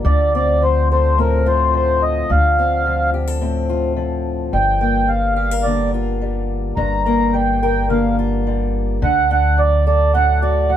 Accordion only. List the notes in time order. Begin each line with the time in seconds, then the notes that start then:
0.05 D5
0.35 D5
0.63 C5
0.91 C5
1.20 A#4
1.47 C5
1.75 C5
2.03 D#5
2.31 F5
4.54 G5
4.81 G5
5.08 F5
5.35 F5
5.63 D5
6.76 A#5
7.04 A#5
7.33 G5
7.62 G5
7.90 F5
9.03 F#5
9.32 F#5
9.59 D5
9.86 D5
10.14 F#5
10.42 D5
10.69 F#5